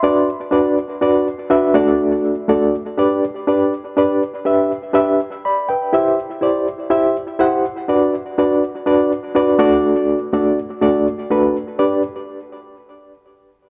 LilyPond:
\new Staff \with { instrumentName = "Reed electric piano" } { \time 4/4 \key g \major \tempo 4 = 123 << { <e'' c'''>8 r2. r8 | r1 | r2. <d'' b''>8 <b' g''>8~ | <b' g''>8 r2. r8 |
r1 | r1 | r1 | } \\ { <d' fis' b' d''>8 r8 <d' fis' b' d''>8 r8 <d' fis' b' d''>8 r8 <d' fis' b' e''>8 <a d' fis' a' d''>8~ | <a d' fis' a' d''>8 r8 <a d' fis' a' d''>8 r8 <d' g' b' d''>8 r8 <d' g' b' d''>8 r8 | <d' g' b' d''>8 r8 <d' g' b' e''>8 r8 <d' g' b' e''>8 r4. | <e' g' c'' e''>8 r8 <e' g' c'' d''>8 r8 <e' g' c'' e''>8 r8 <e' g' c'' fis''>8 r8 |
<d' fis' b' d''>8 r8 <d' fis' b' d''>8 r8 <d' fis' b' d''>8 r8 <d' fis' b' d''>8 <a d' fis' a' d''>8~ | <a d' fis' a' d''>8 r8 <a d' fis' a' d''>8 r8 <a d' fis' a' d''>8 r8 <a d' fis' a' b'>8 r8 | <d' g' b' d''>8 r2. r8 | } >> }